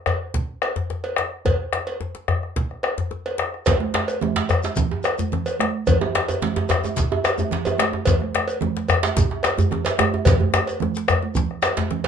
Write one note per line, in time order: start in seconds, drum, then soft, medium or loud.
0.06 bombo rim medium
0.06 cowbell soft
0.06 djembe bass medium
0.34 bombo low medium
0.34 djembe slap medium
0.62 bombo rim medium
0.62 cowbell soft
0.76 djembe slap medium
0.76 djembe bass medium
0.90 bombo rim soft
0.90 djembe tone medium
1.04 bombo rim soft
1.04 cowbell soft
1.16 bombo rim medium
1.16 djembe slap medium
1.45 bombo low medium
1.45 cowbell medium
1.45 djembe bass medium
1.73 bombo rim medium
1.73 djembe slap medium
1.87 cowbell soft
2.01 djembe tone medium
2.15 djembe slap medium
2.28 bombo rim medium
2.28 djembe slap soft
2.28 djembe bass medium
2.43 bombo rim soft
2.56 bombo low medium
2.56 djembe slap medium
2.71 bombo rim soft
2.83 bombo rim medium
2.83 cowbell soft
2.83 djembe slap soft
2.98 djembe slap medium
2.98 djembe bass medium
3.11 djembe slap soft
3.11 djembe tone medium
3.26 bombo rim soft
3.26 cowbell soft
3.38 bombo rim medium
3.38 djembe slap medium
3.54 bombo rim soft
3.66 bombo low medium
3.66 cowbell medium
3.66 djembe slap soft
3.66 djembe slap medium
3.66 djembe bass medium
3.66 low conga medium
3.66 shekere soft
3.80 high conga medium
3.94 bombo rim medium
3.94 djembe slap medium
4.08 cowbell soft
4.08 shekere soft
4.21 high conga medium
4.21 djembe tone medium
4.21 low conga medium
4.36 djembe slap loud
4.36 djembe slap medium
4.49 bombo rim medium
4.49 cowbell soft
4.49 high conga soft
4.49 djembe bass medium
4.49 shekere soft
4.63 djembe slap medium
4.63 high conga medium
4.63 shekere soft
4.76 bombo low medium
4.76 djembe slap medium
4.76 high conga soft
4.76 low conga medium
4.76 shekere medium
4.91 djembe tone medium
5.04 bombo rim medium
5.04 cowbell medium
5.04 shekere soft
5.18 djembe slap medium
5.18 high conga medium
5.18 djembe bass medium
5.18 shekere soft
5.32 bombo rim soft
5.32 high conga soft
5.32 djembe tone medium
5.32 low conga medium
5.46 bombo rim soft
5.46 cowbell soft
5.46 shekere soft
5.59 bombo rim medium
5.59 djembe slap medium
5.59 high conga medium
5.87 bombo low medium
5.87 cowbell medium
5.87 djembe slap soft
5.87 low conga medium
5.87 djembe bass medium
5.87 shekere medium
6.01 djembe tone loud
6.01 high conga medium
6.15 bombo rim medium
6.15 djembe slap medium
6.28 cowbell soft
6.28 djembe tone medium
6.28 shekere soft
6.42 djembe slap medium
6.42 djembe tone medium
6.42 high conga medium
6.42 low conga medium
6.56 bombo rim soft
6.56 djembe slap medium
6.56 djembe tone loud
6.69 bombo rim medium
6.69 cowbell soft
6.69 djembe slap medium
6.69 djembe bass medium
6.69 shekere soft
6.84 high conga soft
6.84 djembe tone medium
6.84 shekere soft
6.96 bombo low medium
6.96 djembe slap medium
6.96 high conga soft
6.96 low conga medium
6.96 shekere medium
7.12 djembe tone loud
7.24 bombo rim medium
7.24 cowbell soft
7.24 djembe slap medium
7.24 shekere soft
7.38 high conga medium
7.38 djembe tone medium
7.38 djembe bass medium
7.38 shekere soft
7.51 bombo rim soft
7.51 djembe slap medium
7.51 high conga soft
7.51 djembe tone medium
7.51 low conga medium
7.65 bombo rim soft
7.65 cowbell soft
7.65 djembe tone loud
7.65 shekere soft
7.78 bombo rim loud
7.78 djembe slap medium
7.78 high conga medium
7.93 djembe tone medium
8.05 bombo low medium
8.05 cowbell medium
8.05 djembe slap soft
8.05 djembe slap medium
8.05 low conga medium
8.05 djembe bass medium
8.05 shekere medium
8.20 bombo rim soft
8.20 high conga medium
8.35 bombo rim medium
8.35 djembe slap medium
8.48 cowbell soft
8.48 shekere soft
8.61 high conga medium
8.61 djembe tone medium
8.61 low conga medium
8.77 bombo rim soft
8.77 djembe slap medium
8.88 bombo rim loud
8.88 cowbell soft
8.88 high conga soft
8.88 djembe bass medium
8.88 shekere soft
9.03 djembe slap loud
9.03 high conga soft
9.03 shekere soft
9.17 bombo low medium
9.17 djembe slap medium
9.17 high conga soft
9.17 low conga medium
9.17 djembe bass medium
9.17 shekere soft
9.31 djembe tone medium
9.43 bombo rim loud
9.43 cowbell soft
9.43 djembe slap medium
9.43 shekere soft
9.57 djembe slap medium
9.57 high conga medium
9.57 djembe bass medium
9.57 shekere soft
9.71 bombo rim soft
9.71 high conga soft
9.71 djembe tone medium
9.71 low conga medium
9.85 bombo rim soft
9.85 cowbell soft
9.85 djembe slap loud
9.85 shekere soft
9.99 bombo rim loud
9.99 djembe slap medium
9.99 high conga medium
9.99 djembe bass medium
10.14 djembe tone medium
10.25 bombo rim soft
10.25 bombo low medium
10.25 cowbell medium
10.25 djembe slap medium
10.25 high conga soft
10.25 djembe bass medium
10.25 low conga medium
10.25 shekere medium
10.40 high conga medium
10.40 djembe bass medium
10.54 bombo rim loud
10.54 djembe slap medium
10.54 djembe tone medium
10.54 shekere soft
10.67 cowbell soft
10.67 djembe slap soft
10.67 shekere soft
10.80 djembe slap soft
10.80 high conga medium
10.80 djembe tone medium
10.80 low conga medium
10.95 djembe slap medium
10.95 shekere soft
11.08 bombo rim loud
11.08 cowbell soft
11.08 djembe bass medium
11.08 shekere soft
11.22 high conga medium
11.35 bombo low medium
11.35 djembe slap medium
11.35 low conga medium
11.35 shekere medium
11.50 bombo rim soft
11.50 high conga soft
11.62 bombo rim loud
11.62 cowbell soft
11.62 djembe slap medium
11.62 high conga soft
11.62 shekere soft
11.77 djembe slap medium
11.77 high conga medium
11.77 djembe bass medium
11.91 djembe tone medium
11.91 low conga medium
12.04 cowbell soft
12.04 djembe slap medium